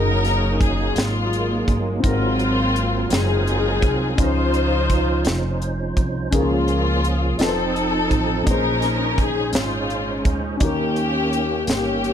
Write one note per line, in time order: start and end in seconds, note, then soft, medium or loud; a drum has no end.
0.00 0.92 F#1 medium
0.00 1.99 F#3 soft
0.00 2.00 F#3 medium
0.00 2.00 A#3 soft
0.00 0.93 C#4 medium
0.00 0.93 D#4 medium
0.00 1.98 D#4 medium
0.00 2.00 D#4 soft
0.00 2.00 G#4 medium
0.00 2.00 G#4 soft
0.00 0.57 A#4 medium
0.00 2.01 A#4 medium
0.25 snare soft
0.25 closed hi-hat soft
0.61 0.97 G#4 medium
0.61 kick medium
0.61 closed hi-hat soft
0.96 1.64 G#1 medium
0.96 1.78 F4 medium
0.96 snare medium
0.96 closed hi-hat medium
1.00 2.02 G#3 medium
1.00 2.02 A#3 medium
1.33 closed hi-hat soft
1.68 2.01 G1 medium
1.68 kick medium
1.68 closed hi-hat soft
2.00 3.07 G#2 medium
2.00 4.14 F#3 medium
2.00 4.12 C4 medium
2.00 4.14 C4 soft
2.00 4.14 F4 medium
2.00 4.14 F4 soft
2.00 4.14 A#4 medium
2.00 kick medium
2.04 3.07 G#1 medium
2.04 4.15 F#3 soft
2.04 3.08 A#3 medium
2.04 3.08 C4 medium
2.04 3.08 F4 medium
2.04 4.16 A#4 medium
2.04 closed hi-hat medium
2.39 closed hi-hat soft
2.76 closed hi-hat soft
3.10 3.78 F#1 medium
3.10 4.15 C4 medium
3.10 4.15 D#4 medium
3.10 4.20 G#4 medium
3.10 snare medium
3.10 closed hi-hat medium
3.47 closed hi-hat soft
3.82 4.15 C2 medium
3.82 kick medium
3.82 closed hi-hat soft
4.15 5.22 C#2 medium
4.15 5.22 C#3 medium
4.15 6.29 F3 medium
4.15 6.27 C#4 medium
4.15 6.29 C#4 soft
4.15 6.28 D#4 soft
4.15 6.29 D#4 soft
4.15 4.25 A#4 soft
4.15 kick medium
4.15 closed hi-hat medium
4.20 5.59 D#4 medium
4.20 6.30 F4 soft
4.20 5.59 F4 medium
4.20 5.63 C5 medium
4.20 6.31 C5 medium
4.25 6.32 C5 medium
4.54 closed hi-hat soft
4.90 kick medium
4.90 closed hi-hat soft
5.25 5.93 F1 medium
5.25 snare medium
5.25 closed hi-hat medium
5.62 closed hi-hat soft
5.97 6.30 C2 medium
5.97 kick medium
5.97 closed hi-hat soft
6.31 7.40 C#2 medium
6.31 7.36 C#3 medium
6.31 7.38 F3 soft
6.31 7.40 A#3 soft
6.31 7.37 A#3 medium
6.31 7.39 C#4 soft
6.31 7.40 C#4 soft
6.31 6.39 D#4 soft
6.31 7.40 G#4 medium
6.31 7.41 A#4 medium
6.31 kick medium
6.31 closed hi-hat medium
6.35 7.37 G#3 medium
6.35 7.37 F4 medium
6.35 7.38 F4 medium
6.68 closed hi-hat soft
7.04 closed hi-hat soft
7.38 8.07 F1 medium
7.38 8.47 F3 soft
7.38 8.47 C4 soft
7.38 8.44 C4 medium
7.38 8.44 D#4 soft
7.38 8.45 D#4 soft
7.38 8.44 D#4 medium
7.38 8.47 F4 soft
7.38 8.47 A4 medium
7.38 8.47 A4 soft
7.38 7.47 B4 soft
7.38 snare medium
7.38 closed hi-hat medium
7.43 8.44 A4 medium
7.48 8.49 C5 medium
7.76 closed hi-hat soft
8.11 8.44 A1 medium
8.11 kick medium
8.11 closed hi-hat soft
8.44 9.50 A#1 medium
8.44 9.50 A#2 soft
8.44 8.52 C4 soft
8.44 10.56 C#4 soft
8.44 10.56 D#4 medium
8.44 10.56 D#4 soft
8.44 10.56 G#4 medium
8.44 10.57 C5 soft
8.44 kick medium
8.44 closed hi-hat medium
8.48 9.50 C#4 medium
8.48 10.55 C#4 medium
8.48 9.51 D#4 medium
8.48 10.57 G#4 soft
8.48 9.19 A#4 medium
8.48 10.58 C5 medium
8.82 snare soft
8.82 closed hi-hat soft
9.18 9.55 G#4 medium
9.18 kick medium
9.18 closed hi-hat soft
9.53 10.21 G#1 medium
9.53 10.57 G#3 medium
9.53 10.57 C#4 medium
9.53 10.31 F4 medium
9.53 snare medium
9.53 closed hi-hat medium
9.90 closed hi-hat soft
10.25 10.58 D2 medium
10.25 kick medium
10.25 closed hi-hat soft
10.57 11.63 D#2 medium
10.57 12.13 D#3 medium
10.57 11.64 D#3 medium
10.57 12.13 A#3 soft
10.57 12.13 C#4 medium
10.57 12.13 C#4 soft
10.57 12.13 D#4 medium
10.57 12.13 G4 medium
10.57 kick medium
10.57 closed hi-hat medium
10.62 11.65 A#3 medium
10.62 11.65 C#4 medium
10.62 12.13 G4 medium
10.62 11.65 G4 medium
10.62 12.13 A#4 medium
10.96 closed hi-hat soft
11.33 closed hi-hat soft
11.67 12.13 G1 medium
11.67 12.13 A#3 medium
11.67 12.13 C#4 medium
11.67 12.13 G4 medium
11.67 snare medium
11.67 closed hi-hat medium
12.04 closed hi-hat soft